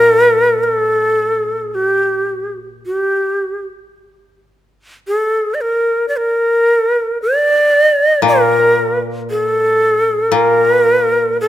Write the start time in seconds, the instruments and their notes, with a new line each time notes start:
Already playing: koto A#2, shakuhachi A#4
0.63 shakuhachi A4
1.75 shakuhachi G4
2.86 shakuhachi G4
5.08 shakuhachi A4
5.54 shakuhachi D5
5.61 shakuhachi A#4
6.08 shakuhachi D5
6.18 shakuhachi A#4
7.22 shakuhachi D5
8.22 koto A#2
8.28 shakuhachi A#4
9.30 shakuhachi A4
10.32 koto A#2, shakuhachi A#4
11.41 shakuhachi A#4